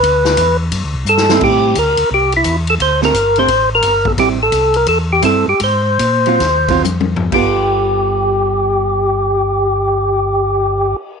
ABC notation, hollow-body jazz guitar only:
X:1
M:4/4
L:1/8
Q:"Swing" 1/4=169
K:Gmix
V:1 name="Hollow-body jazz guitar"
z6 z [G,CE]- | [G,CE]2 z6 | z [D,A,CG] z [D,A,CG] z4 | [G,CE] z4 z [G,CE] z |
z3 [_G,CF] z [G,CF] z2 | [G,B,FA]8- | [G,B,FA]8 |]